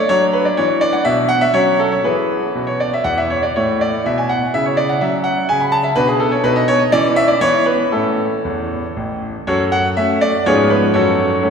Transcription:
0.09 F#3 D4 C#5
0.33 B4
0.45 D5
0.57 E3 D4 C#5
0.81 D5
0.93 F#5
1.05 B2 E5
1.29 F#5
1.41 E5
1.54 F#3 C#4 C#5
1.80 A4
1.92 C#5
2.04 E3 E4 G#4 B4
2.55 B2
2.67 C#5
2.80 D5
2.94 E5
3.04 E2 F#5
3.17 E5
3.30 C#5
3.43 D5
3.56 A2 E4 C#5
3.81 D5
4.06 B2 E5
4.18 G#5
4.29 F#5
4.54 C#3 E4 E5
4.66 C#5
4.77 D5
4.89 F#5
5.01 F#3 C#4 E5
5.24 F#5
5.49 C#3 G#5
5.60 B5
5.72 A5
5.83 E5
5.96 B2 D4 B4
6.08 G#4
6.20 A4
6.32 C#5
6.44 B2 D#4 B4
6.56 D#5
6.68 C#5
6.79 D#5
6.92 E3 C#4 D5
7.16 E5
7.28 D5
7.41 E3 B3 C#5
7.66 B4
7.92 A2 C#4 E4 A4
8.45 E2
8.96 A1
9.47 F#2 F#4 A4 C#5
9.72 F#5
9.97 A3 C#4 F#4 E5
10.21 D5
10.46 G#2 F3 B3 C#4 F4 G#4 C#5
10.70 B4
10.94 F#2 F#4 A4 C#5
11.42 F#3 A3 C#4

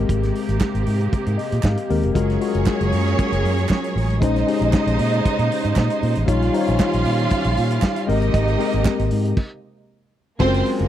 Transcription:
Already playing: C3 G#3 A#3 C4 G4 A#4
0.09 G#1, kick, closed hi-hat
0.23 snare, closed hi-hat
0.35 open hi-hat
0.49 G#1, closed hi-hat
0.60 kick, snare, clap
0.75 G#1, closed hi-hat
0.86 G#2, open hi-hat
1.01 closed hi-hat
1.12 muted fingered electric bass stroke, kick, closed hi-hat
1.26 G#2, closed hi-hat
1.38 D#5, open hi-hat
1.52 A#2, closed hi-hat
1.63 G#2 F5, kick, snare, clap
1.77 closed hi-hat
1.89 D#2 G#3 C4 G4 A#4, open hi-hat
2.03 F1, closed hi-hat
2.15 F#1 F#3 G#3 A#3 C#4 F4 F#4 G#4 A#4 C#5, kick, closed hi-hat
2.30 snare, closed hi-hat
2.41 G#3 F4 F#4 G#4, open hi-hat
2.48 A#4
2.55 F#1, closed hi-hat
2.66 kick, snare, clap
2.81 F#1, closed hi-hat
2.92 F#2, open hi-hat
3.07 closed hi-hat
3.19 kick, closed hi-hat
3.32 F#1, closed hi-hat
3.44 F#2, open hi-hat
3.58 closed hi-hat
3.69 kick, snare, clap
3.84 closed hi-hat
3.96 A1, open hi-hat
4.10 closed hi-hat
4.20 A#1 C#3 G#3 C#4 D#4 C5 D#5, kick, closed hi-hat
4.36 snare, closed hi-hat
4.46 G#3 C#4 D#4 G4, open hi-hat
4.54 G#4
4.61 A#1, closed hi-hat
4.73 kick, snare, clap
4.87 A#1, closed hi-hat
4.99 A#2, open hi-hat
5.14 closed hi-hat
5.25 muted fingered electric bass stroke, kick, closed hi-hat
5.39 A#2, closed hi-hat
5.52 open hi-hat
5.65 G#2, closed hi-hat
5.76 A#2, kick, snare, clap
5.90 closed hi-hat
6.03 A#2, open hi-hat
6.15 A1, closed hi-hat
6.27 A#1 D#3 G3 C#4 D#4 F4 C#5 F5, kick, closed hi-hat
6.42 snare, closed hi-hat
6.53 G3 D#4 F4 C5, open hi-hat
6.61 C#5
6.68 A#1, closed hi-hat
6.80 kick, snare, clap
6.93 A#1, closed hi-hat
7.05 A#2, open hi-hat
7.19 closed hi-hat
7.30 kick, closed hi-hat
7.44 A#1, closed hi-hat
7.57 A#2, open hi-hat
7.71 closed hi-hat
7.82 kick, snare, clap
7.96 closed hi-hat
8.07 G#1 C3 G#3 A#3 C4 D#4 G4 A#4 D#5, open hi-hat
8.22 closed hi-hat
8.34 G#1, kick, closed hi-hat
8.48 closed hi-hat
8.59 G#3 C4 G4 A#4, open hi-hat
8.73 G#1, closed hi-hat
8.85 kick, snare, clap
8.99 G#1, closed hi-hat
9.11 G#2, open hi-hat
9.25 closed hi-hat
9.37 kick, crash
10.39 F#1 F#3 G#3 A#3 C4 C#4 F4 F#4 G#4 A4 C5, kick, crash
10.47 A#4
10.54 closed hi-hat
10.66 open hi-hat
10.79 F#1 A#3 A#4, closed hi-hat

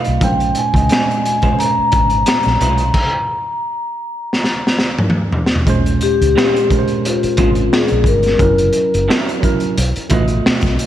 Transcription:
Already playing: B2 A3 F4 D#5 F5
0.05 B1, closed hi-hat
0.20 A#1 A#2 G#3 C#4 G5, kick, closed hi-hat
0.24 C5
0.40 closed hi-hat
0.55 G#5, closed hi-hat
0.74 C#2 A#2 G#3 C#4 D#5, kick, closed hi-hat
0.89 finger snap, snare, closed hi-hat
1.11 closed hi-hat
1.25 G#5, closed hi-hat
1.42 A#2 G#3 C#4 F4 B4 C5, kick, closed hi-hat
1.53 C5
1.59 A#5, closed hi-hat
1.78 muted fingered electric bass stroke
1.92 G#1, kick, closed hi-hat
2.10 closed hi-hat
2.26 finger snap, muted clean electric guitar stroke, snare, closed hi-hat
2.43 A#1, closed hi-hat
2.47 snare
2.60 B1 G#3 C#4 F4 C5, closed hi-hat
2.78 closed hi-hat
2.94 kick, crash
4.33 snare
4.44 snare
4.67 snare
4.79 snare
4.99 mid tom
5.10 mid tom
5.33 floor tom
5.46 snare
5.56 floor tom
5.66 A#1 A#2 G#3 C#4 C5, kick, closed hi-hat
5.86 closed hi-hat
6.01 G4, closed hi-hat
6.21 C#2, closed hi-hat
6.36 G#3 C#4 F4 C5, finger snap, snare
6.56 closed hi-hat
6.68 A#2 G#3 C#4 A#4, kick, closed hi-hat
6.79 C5
6.88 closed hi-hat
7.05 F4, closed hi-hat
7.23 muted fingered electric bass stroke, closed hi-hat
7.36 G#1 A#2 G#3 C4 C#4 F4 C5, kick, closed hi-hat
7.40 F4
7.45 C#4
7.55 closed hi-hat
7.73 G#4, finger snap, snare
7.88 A#1, closed hi-hat
8.04 G1 A#4, kick, closed hi-hat
8.23 snare, closed hi-hat
8.38 F#1 F#3 C#4 E4 A#4, kick, closed hi-hat
8.58 closed hi-hat
8.73 closed hi-hat
8.94 F#1, closed hi-hat
9.08 F#3 C#4 E4 A#4, finger snap, snare
9.29 closed hi-hat
9.41 F#3 C#4 E4 A#4, kick, closed hi-hat
9.60 closed hi-hat
9.78 B1, closed hi-hat
9.96 muted fingered electric bass stroke, closed hi-hat
10.09 A1 B2 A3 D#4 F4 B4 D#5, kick, closed hi-hat
10.28 closed hi-hat
10.46 finger snap, muted fingered electric bass stroke, snare
10.61 B1, kick, closed hi-hat
10.65 snare
10.79 closed hi-hat

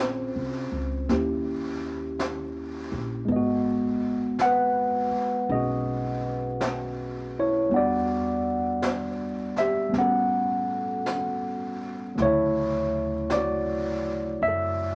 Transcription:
Already playing: A#1 C4 C#4 F4 G#4 C5
0.36 C2
0.72 C#2
1.09 D#2 A#3 C#4 E4 G4, brush sweep, snare
2.19 brush sweep, snare, hi-hat pedal
2.92 A#1
3.25 G#1 G#3 B3
3.29 D#5, brush sweep
3.36 F#4
4.39 F#5, brush sweep, snare, hi-hat pedal
4.45 B4
5.11 muted upright bass stroke
5.49 B1 C#4 F#4 G#4 D#5, brush sweep
5.55 F#4
6.61 brush sweep, snare, hi-hat pedal
7.39 E4 C#5
7.69 E2 G3 B3 D4, brush sweep
7.74 F#4 D5 F#5
8.82 brush sweep, snare, hi-hat pedal
9.56 G4 E5, snare
9.89 G3 B3
9.94 A1 C#4, brush sweep, snare
9.99 F#4 A4 F#5
11.06 brush sweep, snare, hi-hat pedal
12.15 D2 C#3 F#3 A3, brush sweep, snare
12.20 E4 C#5
12.25 E4
13.30 D5, brush sweep, snare, hi-hat pedal
13.37 F#4
14.41 F#2 E5, brush sweep
14.48 A4

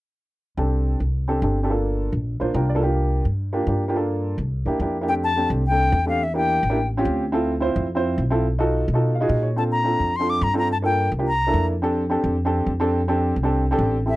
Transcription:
0.57 C2 C4 D4 G4 A4
1.00 C2
1.28 C4 D4 G4 A4
1.42 G1 C4 D4 G4 A4
1.63 C4 D4 G4 A4
1.70 A#3 D4 F4 A4
2.12 A#1
2.40 A#1 A#3 D4 F4 C5
2.54 C2 A#3 D4 F4 A#4 G5
2.69 D5
2.75 A#3 D4 F4 A4
2.82 A#3 D4 F4 G4
3.25 G2
3.53 A#3 D4 F4 G4
3.67 G2 A#3 D4 F4 G4
3.88 A#3 D4 F4 G4
3.95 A#3 D4 F4 A4
4.38 C2
4.66 E2 A#3 D4 E4 G4
4.80 F2 A#3 D4 E4 G4
5.01 A#3 D4 E4 G4
5.08 A3 C4 D4 G4 G5
5.24 A5
5.36 A3 C4 D4 G4
5.50 C2
5.67 A3 G5
5.71 C4 D4 A4
5.92 E2
6.06 A3 C4 D4 G4 F5
6.23 E5
6.34 A#3 D4 E4 G4 G5
6.63 A1
6.70 A#3 D4 E4 G4
6.97 C4 C#4 F4 G4
7.05 D2
7.32 C4 E4 F4 A4
7.60 C4 E4 F4 C5
7.76 F2
7.95 C4 E4 F4 C5
8.18 B1
8.30 C4 E4 F4 A4
8.59 D#4 F4 F#4 A4
8.88 B2
8.94 D#4 F4 F#4 A4
9.15 F5
9.20 D#4 F4 F#4 G#4
9.28 A#2 D#5
9.43 C#5
9.56 C4 D4 F4 A4 A5
9.72 A#5
9.84 C4 D4 F4 A4
10.00 F2
10.16 C4 D4 F4 C6
10.21 A4
10.30 D6
10.41 G2 A#5
10.54 C4 D4 F4 A4
10.59 A#5
10.72 A5
10.82 A#3 D4 F4 A4 G5
11.12 C2
11.19 A#3 D4 F4 G4
11.27 A#5
11.47 A#3 D4 E4 A4
11.53 F2
11.82 C4 D4 G4 A4
12.10 C4 D4 G4 A4
12.24 F2
12.45 C4 D4 G4 A4
12.66 F2
12.80 C4 D4 G4 A4
13.08 C4 D4 G4 A4
13.36 C2
13.43 C4 D4 G4 A4
13.71 C4 D4 G4 A4
13.79 A1
14.06 C4 E4 G4 A4 E5

